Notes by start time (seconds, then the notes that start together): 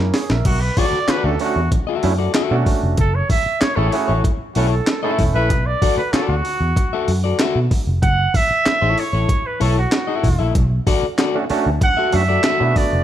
Already playing: A#3 C#4 E4 A#4
0.00 F#2
0.14 G#4 C#5, snare, open hi-hat
0.30 A#1 A#4 E5, snare
0.45 B1 F#4, kick, closed hi-hat, crash
0.61 B4
0.77 F#4 A4 D5, kick, open hi-hat
0.93 muted picked electric bass stroke
1.08 F#4 A4 B4 D5, muted picked electric bass stroke, snare, clap, closed hi-hat
1.24 D2 A3 C#4 D4 F#4 A4
1.39 A3 C#4 D4 F#4, open hi-hat
1.56 E2
1.72 D4 F#4, kick, closed hi-hat
1.87 F#4 A4 E5
2.03 F#2 A3 C#4 D4 E4, open hi-hat
2.18 D4 F#4 A4 D5
2.34 F#4 A4 E5, snare, clap, closed hi-hat
2.51 B2 A3 C#4 D4 F#4
2.66 kick, open hi-hat
2.83 F1
2.97 F#1 A4, kick, closed hi-hat
3.15 C#5
3.30 E5, kick, open hi-hat
3.46 muted picked electric bass stroke
3.61 C#5, muted picked electric bass stroke, snare, clap, closed hi-hat
3.76 A1 A3 C#4 E4 G#4 A4 C#5
3.92 A3 C#4 E4 F#4 G#4, open hi-hat
4.08 A1 E4 A4 C#5
4.24 E4 G#4, kick, closed hi-hat
4.54 B1 A3 C#4 E4 F#4 A4 C#5, open hi-hat
4.70 E4 G#4 A4
4.87 snare, clap, closed hi-hat
5.02 A3 C#4 E4 A4 E5
5.19 E1, kick, open hi-hat
5.35 A#1 E4 A4 B4 E5
5.50 B1, kick, closed hi-hat
5.66 D5
5.82 F#4 A4 D5, kick, open hi-hat
5.97 B4, muted picked electric bass stroke
6.12 F#4 A4 D5, muted picked electric bass stroke, snare, clap, closed hi-hat
6.28 D2 F#4
6.45 open hi-hat
6.61 E2
6.76 kick, closed hi-hat
6.93 F#4 A4 E5
7.08 F#2, open hi-hat
7.24 F#4 A4 D5
7.39 F#4 A4 E5, snare, clap, closed hi-hat
7.56 B2
7.71 kick, open hi-hat
7.87 F1
8.02 F#1 F#5, kick, closed hi-hat
8.34 E5, kick, open hi-hat
8.51 muted picked electric bass stroke
8.66 muted picked electric bass stroke, snare, clap, closed hi-hat
8.81 A1 E4 A4 C#5
8.98 C#5, open hi-hat
9.13 A1 E4 A4 C#5
9.29 kick, closed hi-hat
9.46 B4
9.60 B1 E4 A4 C#5, open hi-hat
9.79 F#4
9.92 snare, clap, closed hi-hat
10.07 E4 A4 E5
10.24 E1, kick, open hi-hat
10.39 A#1 E4 A4 E5
10.55 B1, kick, closed hi-hat
10.87 F#4 A4 D5, kick, open hi-hat
11.03 muted picked electric bass stroke
11.19 F#4 A4 D5, snare, clap, closed hi-hat
11.35 A3 C#4 D4 F#4
11.50 A3 C#4 D4 F#4, muted picked electric bass stroke, open hi-hat
11.66 D2
11.81 D4 F#4 F#5, kick, closed hi-hat
11.97 F#4 A4 E5
12.12 F#2 A3 C#4 D4 F#4 E5, open hi-hat
12.29 D4 F#4 A4 D5
12.44 F#4 A4 E5, snare, clap, closed hi-hat
12.60 B2 A3 B3 D4 E4
12.67 F#4
12.76 D5, kick, open hi-hat
12.93 F1